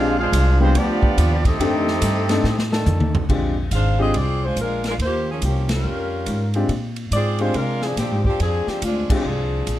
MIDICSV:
0, 0, Header, 1, 9, 480
1, 0, Start_track
1, 0, Tempo, 424628
1, 1808, Time_signature, 4, 2, 24, 8
1, 11069, End_track
2, 0, Start_track
2, 0, Title_t, "Trumpet section"
2, 0, Program_c, 0, 61
2, 0, Note_on_c, 0, 62, 85
2, 0, Note_on_c, 0, 68, 90
2, 0, Note_on_c, 0, 72, 89
2, 0, Note_on_c, 0, 77, 101
2, 205, Note_off_c, 0, 72, 0
2, 210, Note_off_c, 0, 77, 0
2, 211, Note_off_c, 0, 68, 0
2, 213, Note_off_c, 0, 62, 0
2, 218, Note_on_c, 0, 72, 86
2, 223, Note_on_c, 0, 77, 101
2, 224, Note_on_c, 0, 68, 88
2, 225, Note_on_c, 0, 62, 86
2, 655, Note_off_c, 0, 72, 0
2, 658, Note_off_c, 0, 68, 0
2, 658, Note_off_c, 0, 77, 0
2, 659, Note_off_c, 0, 62, 0
2, 698, Note_on_c, 0, 56, 86
2, 699, Note_on_c, 0, 72, 94
2, 702, Note_on_c, 0, 65, 85
2, 704, Note_on_c, 0, 62, 81
2, 848, Note_off_c, 0, 56, 0
2, 848, Note_off_c, 0, 72, 0
2, 850, Note_off_c, 0, 65, 0
2, 851, Note_off_c, 0, 62, 0
2, 874, Note_on_c, 0, 59, 86
2, 877, Note_on_c, 0, 65, 87
2, 877, Note_on_c, 0, 67, 89
2, 878, Note_on_c, 0, 74, 102
2, 1642, Note_off_c, 0, 67, 0
2, 1649, Note_off_c, 0, 59, 0
2, 1650, Note_off_c, 0, 65, 0
2, 1651, Note_off_c, 0, 74, 0
2, 1655, Note_on_c, 0, 67, 82
2, 1657, Note_on_c, 0, 60, 89
2, 1659, Note_on_c, 0, 75, 95
2, 1660, Note_on_c, 0, 69, 85
2, 3210, Note_off_c, 0, 60, 0
2, 3210, Note_off_c, 0, 67, 0
2, 3211, Note_off_c, 0, 75, 0
2, 3212, Note_off_c, 0, 69, 0
2, 11069, End_track
3, 0, Start_track
3, 0, Title_t, "Grand piano"
3, 0, Program_c, 1, 0
3, 0, Note_on_c, 1, 56, 66
3, 0, Note_on_c, 1, 60, 65
3, 0, Note_on_c, 1, 62, 65
3, 0, Note_on_c, 1, 65, 62
3, 0, Note_on_c, 1, 67, 76
3, 166, Note_off_c, 1, 56, 0
3, 169, Note_off_c, 1, 60, 0
3, 171, Note_off_c, 1, 62, 0
3, 172, Note_off_c, 1, 65, 0
3, 174, Note_off_c, 1, 67, 0
3, 678, Note_on_c, 1, 55, 71
3, 684, Note_on_c, 1, 59, 70
3, 688, Note_on_c, 1, 62, 69
3, 692, Note_on_c, 1, 67, 84
3, 694, Note_on_c, 1, 65, 70
3, 832, Note_off_c, 1, 55, 0
3, 835, Note_off_c, 1, 59, 0
3, 837, Note_off_c, 1, 62, 0
3, 839, Note_off_c, 1, 67, 0
3, 840, Note_off_c, 1, 65, 0
3, 1801, Note_on_c, 1, 57, 75
3, 1805, Note_on_c, 1, 60, 70
3, 1808, Note_on_c, 1, 62, 70
3, 1814, Note_on_c, 1, 63, 65
3, 1814, Note_on_c, 1, 67, 80
3, 2082, Note_off_c, 1, 57, 0
3, 2084, Note_off_c, 1, 60, 0
3, 2085, Note_off_c, 1, 62, 0
3, 2088, Note_off_c, 1, 63, 0
3, 2089, Note_off_c, 1, 67, 0
3, 2581, Note_on_c, 1, 57, 72
3, 2589, Note_on_c, 1, 60, 68
3, 2591, Note_on_c, 1, 62, 71
3, 2593, Note_on_c, 1, 63, 71
3, 2596, Note_on_c, 1, 69, 85
3, 2742, Note_off_c, 1, 57, 0
3, 2746, Note_off_c, 1, 60, 0
3, 2747, Note_off_c, 1, 62, 0
3, 2748, Note_off_c, 1, 63, 0
3, 2749, Note_off_c, 1, 69, 0
3, 3714, Note_on_c, 1, 56, 59
3, 3719, Note_on_c, 1, 60, 52
3, 3724, Note_on_c, 1, 62, 56
3, 3725, Note_on_c, 1, 65, 53
3, 3725, Note_on_c, 1, 67, 65
3, 3998, Note_off_c, 1, 56, 0
3, 4000, Note_off_c, 1, 60, 0
3, 4003, Note_off_c, 1, 62, 0
3, 4003, Note_off_c, 1, 65, 0
3, 4003, Note_off_c, 1, 67, 0
3, 4504, Note_on_c, 1, 56, 74
3, 4507, Note_on_c, 1, 60, 70
3, 4510, Note_on_c, 1, 62, 66
3, 4511, Note_on_c, 1, 65, 63
3, 4516, Note_on_c, 1, 67, 83
3, 4663, Note_off_c, 1, 56, 0
3, 4664, Note_off_c, 1, 60, 0
3, 4666, Note_off_c, 1, 62, 0
3, 4667, Note_off_c, 1, 65, 0
3, 4669, Note_off_c, 1, 67, 0
3, 7401, Note_on_c, 1, 56, 67
3, 7406, Note_on_c, 1, 60, 64
3, 7413, Note_on_c, 1, 62, 64
3, 7414, Note_on_c, 1, 65, 58
3, 7416, Note_on_c, 1, 67, 76
3, 7553, Note_off_c, 1, 56, 0
3, 7556, Note_off_c, 1, 60, 0
3, 7559, Note_off_c, 1, 62, 0
3, 7560, Note_off_c, 1, 65, 0
3, 7561, Note_off_c, 1, 67, 0
3, 8359, Note_on_c, 1, 56, 71
3, 8365, Note_on_c, 1, 60, 60
3, 8369, Note_on_c, 1, 62, 62
3, 8373, Note_on_c, 1, 65, 61
3, 8375, Note_on_c, 1, 67, 74
3, 8513, Note_off_c, 1, 56, 0
3, 8516, Note_off_c, 1, 60, 0
3, 8518, Note_off_c, 1, 62, 0
3, 8520, Note_off_c, 1, 65, 0
3, 8521, Note_off_c, 1, 67, 0
3, 10281, Note_on_c, 1, 56, 64
3, 10284, Note_on_c, 1, 60, 57
3, 10284, Note_on_c, 1, 62, 62
3, 10293, Note_on_c, 1, 65, 61
3, 10298, Note_on_c, 1, 67, 74
3, 10436, Note_off_c, 1, 56, 0
3, 10437, Note_off_c, 1, 60, 0
3, 10437, Note_off_c, 1, 62, 0
3, 10442, Note_off_c, 1, 65, 0
3, 10444, Note_off_c, 1, 67, 0
3, 11069, End_track
4, 0, Start_track
4, 0, Title_t, "Saxophone section"
4, 0, Program_c, 2, 65
4, 4216, Note_on_c, 2, 72, 86
4, 4218, Note_on_c, 2, 62, 82
4, 4218, Note_on_c, 2, 68, 84
4, 4221, Note_on_c, 2, 77, 96
4, 4498, Note_off_c, 2, 72, 0
4, 4499, Note_off_c, 2, 68, 0
4, 4500, Note_off_c, 2, 62, 0
4, 4501, Note_off_c, 2, 77, 0
4, 4527, Note_on_c, 2, 60, 78
4, 4529, Note_on_c, 2, 65, 79
4, 4529, Note_on_c, 2, 68, 79
4, 4530, Note_on_c, 2, 75, 96
4, 4680, Note_off_c, 2, 60, 0
4, 4681, Note_off_c, 2, 65, 0
4, 4681, Note_off_c, 2, 68, 0
4, 4682, Note_off_c, 2, 75, 0
4, 4705, Note_on_c, 2, 74, 98
4, 4707, Note_on_c, 2, 68, 85
4, 4708, Note_on_c, 2, 60, 82
4, 4709, Note_on_c, 2, 65, 79
4, 5004, Note_off_c, 2, 74, 0
4, 5005, Note_off_c, 2, 68, 0
4, 5006, Note_off_c, 2, 60, 0
4, 5006, Note_off_c, 2, 65, 0
4, 5023, Note_on_c, 2, 56, 74
4, 5023, Note_on_c, 2, 62, 72
4, 5023, Note_on_c, 2, 65, 71
4, 5026, Note_on_c, 2, 72, 88
4, 5180, Note_off_c, 2, 56, 0
4, 5180, Note_off_c, 2, 62, 0
4, 5180, Note_off_c, 2, 65, 0
4, 5181, Note_off_c, 2, 72, 0
4, 5202, Note_on_c, 2, 56, 76
4, 5203, Note_on_c, 2, 65, 73
4, 5203, Note_on_c, 2, 70, 83
4, 5206, Note_on_c, 2, 62, 72
4, 5473, Note_off_c, 2, 56, 0
4, 5473, Note_off_c, 2, 65, 0
4, 5473, Note_off_c, 2, 70, 0
4, 5475, Note_off_c, 2, 62, 0
4, 5512, Note_on_c, 2, 56, 73
4, 5514, Note_on_c, 2, 70, 86
4, 5515, Note_on_c, 2, 65, 72
4, 5517, Note_on_c, 2, 62, 75
4, 5580, Note_off_c, 2, 56, 0
4, 5582, Note_off_c, 2, 70, 0
4, 5583, Note_off_c, 2, 65, 0
4, 5584, Note_off_c, 2, 62, 0
4, 5678, Note_on_c, 2, 72, 90
4, 5680, Note_on_c, 2, 58, 80
4, 5680, Note_on_c, 2, 67, 81
4, 5681, Note_on_c, 2, 65, 77
4, 5951, Note_off_c, 2, 72, 0
4, 5952, Note_off_c, 2, 58, 0
4, 5952, Note_off_c, 2, 65, 0
4, 5952, Note_off_c, 2, 67, 0
4, 5985, Note_on_c, 2, 58, 67
4, 5986, Note_on_c, 2, 53, 64
4, 5990, Note_on_c, 2, 68, 75
4, 5991, Note_on_c, 2, 61, 62
4, 6131, Note_off_c, 2, 53, 0
4, 6131, Note_off_c, 2, 58, 0
4, 6133, Note_off_c, 2, 68, 0
4, 6134, Note_off_c, 2, 61, 0
4, 6158, Note_on_c, 2, 53, 70
4, 6161, Note_on_c, 2, 58, 69
4, 6163, Note_on_c, 2, 67, 76
4, 6165, Note_on_c, 2, 61, 68
4, 6431, Note_off_c, 2, 53, 0
4, 6433, Note_off_c, 2, 58, 0
4, 6434, Note_off_c, 2, 67, 0
4, 6435, Note_off_c, 2, 61, 0
4, 6465, Note_on_c, 2, 55, 67
4, 6465, Note_on_c, 2, 61, 67
4, 6465, Note_on_c, 2, 70, 79
4, 6466, Note_on_c, 2, 65, 72
4, 7366, Note_off_c, 2, 55, 0
4, 7367, Note_off_c, 2, 61, 0
4, 7367, Note_off_c, 2, 65, 0
4, 7367, Note_off_c, 2, 70, 0
4, 8064, Note_on_c, 2, 74, 98
4, 8066, Note_on_c, 2, 65, 84
4, 8067, Note_on_c, 2, 60, 83
4, 8069, Note_on_c, 2, 68, 83
4, 8345, Note_off_c, 2, 74, 0
4, 8346, Note_off_c, 2, 60, 0
4, 8346, Note_off_c, 2, 65, 0
4, 8348, Note_off_c, 2, 68, 0
4, 8366, Note_on_c, 2, 65, 83
4, 8370, Note_on_c, 2, 72, 91
4, 8372, Note_on_c, 2, 62, 80
4, 8373, Note_on_c, 2, 56, 85
4, 8522, Note_off_c, 2, 65, 0
4, 8523, Note_off_c, 2, 62, 0
4, 8529, Note_off_c, 2, 56, 0
4, 8535, Note_off_c, 2, 72, 0
4, 8535, Note_on_c, 2, 65, 83
4, 8536, Note_on_c, 2, 62, 86
4, 8540, Note_on_c, 2, 70, 91
4, 8542, Note_on_c, 2, 56, 79
4, 8842, Note_off_c, 2, 65, 0
4, 8843, Note_off_c, 2, 62, 0
4, 8844, Note_off_c, 2, 70, 0
4, 8846, Note_off_c, 2, 56, 0
4, 8855, Note_on_c, 2, 60, 75
4, 8857, Note_on_c, 2, 62, 76
4, 8857, Note_on_c, 2, 68, 84
4, 8858, Note_on_c, 2, 53, 73
4, 9011, Note_off_c, 2, 53, 0
4, 9012, Note_off_c, 2, 62, 0
4, 9014, Note_off_c, 2, 60, 0
4, 9019, Note_off_c, 2, 68, 0
4, 9025, Note_on_c, 2, 53, 73
4, 9025, Note_on_c, 2, 67, 87
4, 9026, Note_on_c, 2, 62, 71
4, 9028, Note_on_c, 2, 60, 76
4, 9306, Note_off_c, 2, 53, 0
4, 9306, Note_off_c, 2, 67, 0
4, 9307, Note_off_c, 2, 62, 0
4, 9308, Note_off_c, 2, 60, 0
4, 9334, Note_on_c, 2, 67, 82
4, 9338, Note_on_c, 2, 53, 74
4, 9340, Note_on_c, 2, 62, 71
4, 9342, Note_on_c, 2, 60, 70
4, 9487, Note_off_c, 2, 67, 0
4, 9489, Note_off_c, 2, 53, 0
4, 9490, Note_off_c, 2, 62, 0
4, 9491, Note_off_c, 2, 60, 0
4, 9505, Note_on_c, 2, 60, 80
4, 9505, Note_on_c, 2, 68, 95
4, 9509, Note_on_c, 2, 53, 80
4, 9509, Note_on_c, 2, 62, 75
4, 9787, Note_off_c, 2, 60, 0
4, 9787, Note_off_c, 2, 68, 0
4, 9789, Note_off_c, 2, 53, 0
4, 9789, Note_off_c, 2, 62, 0
4, 9823, Note_on_c, 2, 53, 71
4, 9824, Note_on_c, 2, 60, 71
4, 9825, Note_on_c, 2, 67, 82
4, 9827, Note_on_c, 2, 62, 72
4, 9983, Note_off_c, 2, 53, 0
4, 9984, Note_off_c, 2, 60, 0
4, 9984, Note_off_c, 2, 67, 0
4, 9985, Note_off_c, 2, 62, 0
4, 10000, Note_on_c, 2, 65, 85
4, 10001, Note_on_c, 2, 56, 67
4, 10002, Note_on_c, 2, 60, 69
4, 10002, Note_on_c, 2, 62, 70
4, 10275, Note_off_c, 2, 65, 0
4, 10276, Note_off_c, 2, 56, 0
4, 10276, Note_off_c, 2, 60, 0
4, 10276, Note_off_c, 2, 62, 0
4, 10318, Note_on_c, 2, 62, 68
4, 10318, Note_on_c, 2, 68, 82
4, 10321, Note_on_c, 2, 53, 68
4, 10321, Note_on_c, 2, 60, 74
4, 11069, Note_off_c, 2, 53, 0
4, 11069, Note_off_c, 2, 60, 0
4, 11069, Note_off_c, 2, 62, 0
4, 11069, Note_off_c, 2, 68, 0
4, 11069, End_track
5, 0, Start_track
5, 0, Title_t, "Trombone section"
5, 0, Program_c, 3, 61
5, 853, Note_on_c, 3, 53, 105
5, 853, Note_on_c, 3, 62, 90
5, 854, Note_on_c, 3, 67, 117
5, 856, Note_on_c, 3, 59, 98
5, 1577, Note_off_c, 3, 53, 0
5, 1577, Note_off_c, 3, 62, 0
5, 1577, Note_off_c, 3, 67, 0
5, 1578, Note_off_c, 3, 59, 0
5, 1786, Note_on_c, 3, 67, 115
5, 1788, Note_on_c, 3, 63, 96
5, 1790, Note_on_c, 3, 57, 94
5, 1795, Note_on_c, 3, 51, 102
5, 2523, Note_off_c, 3, 67, 0
5, 2524, Note_off_c, 3, 63, 0
5, 2525, Note_off_c, 3, 57, 0
5, 2527, Note_off_c, 3, 51, 0
5, 3061, Note_on_c, 3, 57, 97
5, 3065, Note_on_c, 3, 69, 116
5, 3068, Note_on_c, 3, 51, 103
5, 3070, Note_on_c, 3, 62, 100
5, 3684, Note_off_c, 3, 57, 0
5, 3686, Note_off_c, 3, 69, 0
5, 3687, Note_off_c, 3, 51, 0
5, 3688, Note_off_c, 3, 62, 0
5, 11069, End_track
6, 0, Start_track
6, 0, Title_t, "Trombone section"
6, 0, Program_c, 4, 61
6, 0, Note_on_c, 4, 56, 92
6, 0, Note_on_c, 4, 62, 91
6, 0, Note_on_c, 4, 65, 84
6, 204, Note_off_c, 4, 56, 0
6, 205, Note_off_c, 4, 65, 0
6, 209, Note_off_c, 4, 62, 0
6, 217, Note_on_c, 4, 56, 90
6, 219, Note_on_c, 4, 65, 91
6, 223, Note_on_c, 4, 62, 86
6, 655, Note_off_c, 4, 56, 0
6, 655, Note_off_c, 4, 65, 0
6, 657, Note_off_c, 4, 62, 0
6, 700, Note_on_c, 4, 53, 82
6, 700, Note_on_c, 4, 56, 84
6, 700, Note_on_c, 4, 60, 82
6, 849, Note_off_c, 4, 53, 0
6, 849, Note_off_c, 4, 56, 0
6, 849, Note_off_c, 4, 60, 0
6, 866, Note_on_c, 4, 59, 87
6, 870, Note_on_c, 4, 53, 84
6, 871, Note_on_c, 4, 62, 86
6, 1645, Note_off_c, 4, 59, 0
6, 1647, Note_off_c, 4, 53, 0
6, 1647, Note_off_c, 4, 62, 0
6, 1647, Note_on_c, 4, 63, 83
6, 1650, Note_on_c, 4, 57, 85
6, 1651, Note_on_c, 4, 60, 84
6, 3205, Note_off_c, 4, 63, 0
6, 3207, Note_off_c, 4, 57, 0
6, 3207, Note_off_c, 4, 60, 0
6, 11069, End_track
7, 0, Start_track
7, 0, Title_t, "Upright bass"
7, 0, Program_c, 5, 32
7, 0, Note_on_c, 5, 34, 101
7, 358, Note_off_c, 5, 34, 0
7, 366, Note_on_c, 5, 36, 107
7, 833, Note_off_c, 5, 36, 0
7, 844, Note_on_c, 5, 38, 86
7, 1311, Note_off_c, 5, 38, 0
7, 1327, Note_on_c, 5, 39, 105
7, 1793, Note_off_c, 5, 39, 0
7, 1801, Note_on_c, 5, 41, 98
7, 2269, Note_off_c, 5, 41, 0
7, 2277, Note_on_c, 5, 43, 100
7, 2747, Note_off_c, 5, 43, 0
7, 2755, Note_on_c, 5, 45, 84
7, 3225, Note_off_c, 5, 45, 0
7, 3235, Note_on_c, 5, 41, 102
7, 3393, Note_off_c, 5, 41, 0
7, 3393, Note_on_c, 5, 39, 59
7, 3545, Note_off_c, 5, 39, 0
7, 3552, Note_on_c, 5, 36, 71
7, 3707, Note_off_c, 5, 36, 0
7, 3716, Note_on_c, 5, 34, 89
7, 4186, Note_off_c, 5, 34, 0
7, 4194, Note_on_c, 5, 32, 84
7, 4665, Note_off_c, 5, 32, 0
7, 4676, Note_on_c, 5, 36, 74
7, 5146, Note_off_c, 5, 36, 0
7, 5157, Note_on_c, 5, 34, 88
7, 5627, Note_off_c, 5, 34, 0
7, 5636, Note_on_c, 5, 39, 86
7, 6107, Note_off_c, 5, 39, 0
7, 6121, Note_on_c, 5, 36, 89
7, 6590, Note_off_c, 5, 36, 0
7, 6603, Note_on_c, 5, 41, 75
7, 7071, Note_off_c, 5, 41, 0
7, 7084, Note_on_c, 5, 44, 90
7, 7552, Note_off_c, 5, 44, 0
7, 7558, Note_on_c, 5, 46, 89
7, 8029, Note_off_c, 5, 46, 0
7, 8038, Note_on_c, 5, 44, 89
7, 8510, Note_off_c, 5, 44, 0
7, 8529, Note_on_c, 5, 48, 76
7, 8996, Note_off_c, 5, 48, 0
7, 9004, Note_on_c, 5, 46, 89
7, 9170, Note_off_c, 5, 46, 0
7, 9170, Note_on_c, 5, 44, 54
7, 9327, Note_off_c, 5, 44, 0
7, 9333, Note_on_c, 5, 41, 68
7, 9481, Note_off_c, 5, 41, 0
7, 9492, Note_on_c, 5, 41, 89
7, 9780, Note_off_c, 5, 41, 0
7, 9968, Note_on_c, 5, 38, 90
7, 10258, Note_off_c, 5, 38, 0
7, 10451, Note_on_c, 5, 36, 80
7, 10918, Note_off_c, 5, 36, 0
7, 10930, Note_on_c, 5, 34, 89
7, 11069, Note_off_c, 5, 34, 0
7, 11069, End_track
8, 0, Start_track
8, 0, Title_t, "Muted upright bass strokes"
8, 9800, Note_on_c, 9, 29, 37
8, 9913, Note_off_c, 9, 29, 0
8, 10281, Note_on_c, 9, 29, 38
8, 10394, Note_off_c, 9, 29, 0
8, 11069, End_track
9, 0, Start_track
9, 0, Title_t, "Drums"
9, 375, Note_on_c, 9, 44, 68
9, 375, Note_on_c, 9, 51, 86
9, 488, Note_off_c, 9, 44, 0
9, 488, Note_off_c, 9, 51, 0
9, 848, Note_on_c, 9, 51, 76
9, 961, Note_off_c, 9, 51, 0
9, 1159, Note_on_c, 9, 36, 78
9, 1272, Note_off_c, 9, 36, 0
9, 1331, Note_on_c, 9, 44, 64
9, 1331, Note_on_c, 9, 51, 77
9, 1445, Note_off_c, 9, 44, 0
9, 1445, Note_off_c, 9, 51, 0
9, 1637, Note_on_c, 9, 36, 68
9, 1640, Note_on_c, 9, 51, 59
9, 1750, Note_off_c, 9, 36, 0
9, 1753, Note_off_c, 9, 51, 0
9, 1814, Note_on_c, 9, 51, 69
9, 1927, Note_off_c, 9, 51, 0
9, 2121, Note_on_c, 9, 38, 46
9, 2234, Note_off_c, 9, 38, 0
9, 2280, Note_on_c, 9, 44, 71
9, 2280, Note_on_c, 9, 51, 85
9, 2393, Note_off_c, 9, 44, 0
9, 2393, Note_off_c, 9, 51, 0
9, 2590, Note_on_c, 9, 51, 55
9, 2594, Note_on_c, 9, 38, 62
9, 2703, Note_off_c, 9, 51, 0
9, 2707, Note_off_c, 9, 38, 0
9, 2762, Note_on_c, 9, 38, 58
9, 2875, Note_off_c, 9, 38, 0
9, 2923, Note_on_c, 9, 38, 65
9, 3036, Note_off_c, 9, 38, 0
9, 3083, Note_on_c, 9, 38, 82
9, 3196, Note_off_c, 9, 38, 0
9, 3233, Note_on_c, 9, 44, 67
9, 3238, Note_on_c, 9, 48, 76
9, 3346, Note_off_c, 9, 44, 0
9, 3351, Note_off_c, 9, 48, 0
9, 3395, Note_on_c, 9, 48, 87
9, 3508, Note_off_c, 9, 48, 0
9, 3557, Note_on_c, 9, 43, 107
9, 3670, Note_off_c, 9, 43, 0
9, 3719, Note_on_c, 9, 36, 68
9, 3724, Note_on_c, 9, 49, 69
9, 3832, Note_off_c, 9, 36, 0
9, 3837, Note_off_c, 9, 49, 0
9, 4196, Note_on_c, 9, 44, 64
9, 4196, Note_on_c, 9, 51, 73
9, 4309, Note_off_c, 9, 44, 0
9, 4309, Note_off_c, 9, 51, 0
9, 4680, Note_on_c, 9, 51, 65
9, 4793, Note_off_c, 9, 51, 0
9, 5162, Note_on_c, 9, 44, 59
9, 5162, Note_on_c, 9, 51, 60
9, 5275, Note_off_c, 9, 44, 0
9, 5275, Note_off_c, 9, 51, 0
9, 5470, Note_on_c, 9, 51, 45
9, 5474, Note_on_c, 9, 38, 54
9, 5583, Note_off_c, 9, 51, 0
9, 5587, Note_off_c, 9, 38, 0
9, 5646, Note_on_c, 9, 51, 60
9, 5759, Note_off_c, 9, 51, 0
9, 6124, Note_on_c, 9, 44, 61
9, 6124, Note_on_c, 9, 51, 72
9, 6237, Note_off_c, 9, 44, 0
9, 6237, Note_off_c, 9, 51, 0
9, 6431, Note_on_c, 9, 51, 64
9, 6436, Note_on_c, 9, 38, 78
9, 6544, Note_off_c, 9, 51, 0
9, 6549, Note_off_c, 9, 38, 0
9, 7079, Note_on_c, 9, 44, 52
9, 7079, Note_on_c, 9, 51, 62
9, 7192, Note_off_c, 9, 44, 0
9, 7192, Note_off_c, 9, 51, 0
9, 7389, Note_on_c, 9, 51, 44
9, 7502, Note_off_c, 9, 51, 0
9, 7562, Note_on_c, 9, 51, 55
9, 7675, Note_off_c, 9, 51, 0
9, 7871, Note_on_c, 9, 51, 47
9, 7984, Note_off_c, 9, 51, 0
9, 8046, Note_on_c, 9, 44, 60
9, 8046, Note_on_c, 9, 51, 73
9, 8159, Note_off_c, 9, 44, 0
9, 8159, Note_off_c, 9, 51, 0
9, 8348, Note_on_c, 9, 51, 42
9, 8461, Note_off_c, 9, 51, 0
9, 8525, Note_on_c, 9, 51, 53
9, 8638, Note_off_c, 9, 51, 0
9, 8837, Note_on_c, 9, 38, 51
9, 8950, Note_off_c, 9, 38, 0
9, 9012, Note_on_c, 9, 44, 55
9, 9012, Note_on_c, 9, 51, 72
9, 9016, Note_on_c, 9, 38, 37
9, 9125, Note_off_c, 9, 44, 0
9, 9125, Note_off_c, 9, 51, 0
9, 9129, Note_off_c, 9, 38, 0
9, 9321, Note_on_c, 9, 36, 56
9, 9434, Note_off_c, 9, 36, 0
9, 9493, Note_on_c, 9, 51, 59
9, 9606, Note_off_c, 9, 51, 0
9, 9807, Note_on_c, 9, 38, 43
9, 9920, Note_off_c, 9, 38, 0
9, 9969, Note_on_c, 9, 44, 51
9, 9969, Note_on_c, 9, 51, 75
9, 10082, Note_off_c, 9, 44, 0
9, 10082, Note_off_c, 9, 51, 0
9, 10283, Note_on_c, 9, 36, 78
9, 10286, Note_on_c, 9, 49, 78
9, 10396, Note_off_c, 9, 36, 0
9, 10399, Note_off_c, 9, 49, 0
9, 10928, Note_on_c, 9, 44, 60
9, 10928, Note_on_c, 9, 51, 65
9, 11042, Note_off_c, 9, 44, 0
9, 11042, Note_off_c, 9, 51, 0
9, 11069, End_track
0, 0, End_of_file